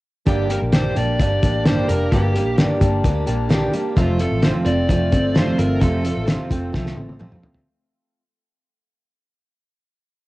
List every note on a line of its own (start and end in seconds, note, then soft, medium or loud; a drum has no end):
0.26 0.57 G1 medium
0.26 0.49 G2 medium
0.26 0.50 D3 medium
0.26 0.50 G3 medium
0.26 0.49 A#3 medium
0.26 0.49 D4 medium
0.26 0.48 G4 medium
0.26 0.51 G4 medium
0.26 kick medium
0.26 closed hi-hat medium
0.49 0.72 G3 soft
0.49 0.73 A#3 soft
0.49 0.73 D4 soft
0.49 0.73 G4 soft
0.49 0.57 A#4 medium
0.49 closed hi-hat medium
0.62 0.91 A#1 medium
0.72 0.96 G2 medium
0.72 0.96 D3 medium
0.72 0.97 G3 medium
0.72 0.96 A#3 medium
0.72 0.95 D4 medium
0.72 0.94 G4 medium
0.72 0.97 C5 medium
0.72 snare medium
0.72 closed hi-hat medium
0.96 1.17 A#1 medium
0.96 1.17 G3 soft
0.96 1.18 A#3 soft
0.96 1.18 D4 soft
0.96 1.19 G4 medium
0.96 1.19 D5 medium
0.96 closed hi-hat medium
1.18 1.39 G1 medium
1.18 1.42 G3 soft
1.18 1.43 A#3 medium
1.18 1.42 D4 medium
1.18 1.41 G4 medium
1.18 1.63 D5 medium
1.18 kick medium
1.18 closed hi-hat medium
1.42 1.82 A1 medium
1.42 1.65 G3 soft
1.42 1.65 A#3 soft
1.42 1.66 D4 soft
1.42 1.65 G4 soft
1.42 kick medium
1.42 closed hi-hat medium
1.66 1.89 G2 medium
1.66 1.89 D3 medium
1.66 1.89 G3 medium
1.66 1.89 A#3 medium
1.66 1.88 D4 medium
1.66 1.87 G4 medium
1.66 1.89 C5 medium
1.66 snare loud
1.66 closed hi-hat medium
1.88 2.09 F1 medium
1.88 2.11 G3 soft
1.88 2.12 A#3 soft
1.88 2.12 D4 soft
1.88 2.12 G4 soft
1.88 2.13 A#4 medium
1.88 closed hi-hat medium
2.12 2.47 G1 loud
2.12 2.35 G2 medium
2.12 2.35 D3 medium
2.12 2.35 G3 medium
2.12 2.35 A#3 medium
2.12 2.34 D4 medium
2.12 2.55 G4 medium
2.12 2.33 G4 medium
2.12 kick medium
2.12 closed hi-hat medium
2.35 2.57 G3 soft
2.35 2.57 A#3 soft
2.35 2.57 D4 soft
2.35 2.58 G4 soft
2.35 closed hi-hat medium
2.47 2.66 A#1 medium
2.58 2.81 G2 medium
2.58 2.81 D3 medium
2.58 2.81 G3 medium
2.58 2.80 A#3 medium
2.58 2.80 D4 medium
2.58 2.79 G4 medium
2.58 snare medium
2.58 closed hi-hat medium
2.80 3.01 G1 loud
2.80 3.02 G3 soft
2.80 3.03 A#3 medium
2.80 3.04 D4 medium
2.80 3.04 G4 medium
2.80 kick medium
2.80 closed hi-hat medium
3.04 3.24 D2 medium
3.04 3.27 G3 medium
3.04 3.27 A#3 medium
3.04 3.26 D4 medium
3.04 3.25 G4 medium
3.04 kick medium
3.04 closed hi-hat medium
3.26 3.67 A#1 medium
3.26 3.48 G3 soft
3.26 3.49 A#3 soft
3.26 3.49 D4 medium
3.26 3.49 G4 medium
3.26 closed hi-hat medium
3.49 3.73 G2 medium
3.49 3.73 D3 medium
3.49 3.73 G3 medium
3.49 3.72 A#3 medium
3.49 3.72 D4 medium
3.49 3.70 G4 medium
3.49 snare loud
3.49 closed hi-hat medium
3.72 3.97 G3 soft
3.72 3.96 A#3 soft
3.72 3.96 D4 medium
3.72 3.96 G4 medium
3.72 closed hi-hat medium
3.96 4.26 F1 loud
3.96 4.19 F2 medium
3.96 4.20 C3 medium
3.96 4.20 F3 medium
3.96 4.18 A3 medium
3.96 4.18 C4 medium
3.96 4.21 F4 medium
3.96 4.17 F4 medium
3.96 kick loud
3.96 closed hi-hat medium
4.18 4.41 F3 soft
4.18 4.41 A3 soft
4.18 4.42 C4 soft
4.18 4.42 F4 soft
4.18 4.43 A4 medium
4.18 closed hi-hat medium
4.32 4.51 A1 medium
4.42 4.65 F2 medium
4.42 4.66 C3 medium
4.42 4.66 F3 medium
4.42 4.66 A3 medium
4.42 4.65 C4 medium
4.42 4.64 F4 medium
4.42 4.50 C5 loud
4.42 snare medium
4.42 closed hi-hat medium
4.65 4.86 F1 loud
4.65 4.87 F3 soft
4.65 4.88 A3 medium
4.65 4.88 C4 soft
4.65 4.89 F4 medium
4.65 4.88 D5 medium
4.65 closed hi-hat medium
4.88 5.13 F1 medium
4.88 5.12 F3 medium
4.88 5.11 A3 medium
4.88 5.10 C4 medium
4.88 5.10 F4 medium
4.88 5.37 D5 medium
4.88 kick medium
4.88 closed hi-hat medium
5.11 5.52 G1 medium
5.11 5.34 F3 soft
5.11 5.34 A3 soft
5.11 5.35 C4 soft
5.11 5.35 F4 soft
5.11 kick medium
5.11 closed hi-hat medium
5.34 5.58 F2 medium
5.34 5.58 C3 medium
5.34 5.58 F3 medium
5.34 5.58 A3 medium
5.34 5.57 C4 medium
5.34 5.56 F4 medium
5.34 5.57 C5 medium
5.34 snare loud
5.34 closed hi-hat medium
5.58 5.78 G1 medium
5.58 5.80 F3 soft
5.58 5.80 A3 soft
5.58 5.80 C4 soft
5.58 5.80 F4 medium
5.58 5.81 A#4 medium
5.58 closed hi-hat medium
5.80 6.11 F1 loud
5.80 6.04 F2 medium
5.80 6.04 C3 medium
5.80 6.04 F3 medium
5.80 6.04 A3 medium
5.80 6.03 C4 medium
5.80 6.02 F4 medium
5.80 6.24 A4 medium
5.80 kick medium
5.80 closed hi-hat medium
6.03 6.25 F3 soft
6.03 6.26 A3 soft
6.03 6.26 C4 soft
6.03 6.26 F4 soft
6.03 closed hi-hat medium
6.17 6.36 A1 medium
6.26 6.50 F2 medium
6.26 6.50 C3 medium
6.26 6.50 F3 medium
6.26 6.50 A3 medium
6.26 6.49 C4 medium
6.26 6.48 F4 medium
6.26 snare medium
6.26 closed hi-hat medium
6.49 6.70 F1 medium
6.49 6.72 F3 soft
6.49 6.73 A3 medium
6.49 6.73 C4 medium
6.49 6.73 F4 medium
6.49 kick medium
6.49 closed hi-hat medium
6.73 6.94 C2 medium
6.73 6.96 F3 medium
6.73 6.96 A3 medium
6.73 6.95 C4 medium
6.73 6.95 F4 medium
6.73 kick medium
6.73 snare soft
6.86 snare soft
6.96 7.36 A1 medium
6.96 7.18 F3 soft
6.96 7.19 A3 soft
6.96 7.19 C4 soft
6.96 7.19 F4 soft
6.96 high tom medium
7.09 high tom medium
7.19 7.43 F2 medium
7.19 7.43 C3 loud
7.19 7.42 F3 medium
7.19 7.42 A3 loud
7.19 7.41 C4 loud
7.19 7.40 F4 medium
7.19 mid tom medium
7.32 mid tom medium
7.42 7.66 F3 soft
7.42 7.66 A3 medium
7.42 7.66 C4 medium
7.42 7.66 F4 soft
7.42 floor tom medium
7.54 floor tom medium